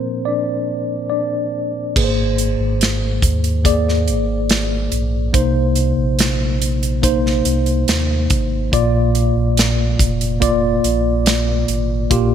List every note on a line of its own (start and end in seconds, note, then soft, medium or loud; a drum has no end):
0.00 1.92 A#2 soft
0.00 1.93 F3 soft
0.00 1.96 A#3 soft
0.00 0.24 C4 soft
0.00 0.27 D4 soft
0.00 1.98 A#4 medium
0.00 0.29 C5 medium
0.25 1.08 D4 soft
0.25 1.08 D5 medium
1.10 1.71 D4 soft
1.10 1.70 D5 medium
1.96 2.56 G#1 medium
1.96 3.19 G#2 medium
1.96 3.57 A#3 medium
1.96 3.57 G#4 medium
1.96 2.03 B4 medium
1.96 kick medium
1.96 crash medium
2.04 3.61 C5 medium
2.38 closed hi-hat medium
2.60 3.19 G#1 medium
2.81 snare medium
2.81 closed hi-hat medium
3.22 4.10 D#2 medium
3.22 kick medium
3.22 closed hi-hat medium
3.44 closed hi-hat soft
3.64 5.25 A#3 medium
3.64 5.26 G#4 medium
3.64 5.26 D5 medium
3.64 kick medium
3.64 closed hi-hat medium
3.89 snare soft
4.08 4.89 G#1 medium
4.08 closed hi-hat medium
4.50 snare medium
4.50 closed hi-hat medium
4.92 5.31 A#1 medium
4.92 closed hi-hat medium
5.33 5.94 C2 medium
5.33 6.57 C3 medium
5.33 6.94 A#3 medium
5.33 6.95 D#4 medium
5.33 6.95 C5 medium
5.33 kick medium
5.33 closed hi-hat medium
5.75 closed hi-hat medium
5.98 7.42 A#1 medium
6.19 snare medium
6.19 closed hi-hat medium
6.62 closed hi-hat medium
6.83 closed hi-hat soft
7.02 8.63 A#3 medium
7.02 8.64 D#4 medium
7.02 8.64 C5 medium
7.02 kick medium
7.02 closed hi-hat medium
7.26 snare soft
7.45 7.85 C2 medium
7.45 closed hi-hat medium
7.66 closed hi-hat soft
7.88 8.27 D#2 medium
7.88 snare medium
7.88 closed hi-hat medium
8.30 8.70 G#1 medium
8.30 kick medium
8.30 closed hi-hat medium
8.72 9.32 A#1 loud
8.72 9.95 A#2 medium
8.72 10.33 A#3 medium
8.72 10.33 F4 medium
8.72 10.34 D5 medium
8.72 kick medium
8.72 closed hi-hat medium
9.15 closed hi-hat medium
9.36 9.95 A#1 medium
9.57 snare medium
9.57 closed hi-hat medium
9.99 10.80 F1 medium
9.99 kick medium
9.99 closed hi-hat medium
10.21 closed hi-hat soft
10.40 12.01 A#3 medium
10.40 12.02 F4 medium
10.40 12.02 D5 medium
10.40 kick medium
10.40 closed hi-hat medium
10.84 11.65 A#1 medium
10.84 closed hi-hat medium
11.26 snare medium
11.26 closed hi-hat medium
11.68 12.08 G#1 medium
11.68 closed hi-hat medium
12.10 12.35 A#1 medium
12.10 12.35 A#2 medium
12.10 12.35 A#3 medium
12.10 12.35 F4 medium
12.10 12.35 G4 medium
12.10 kick medium
12.10 closed hi-hat medium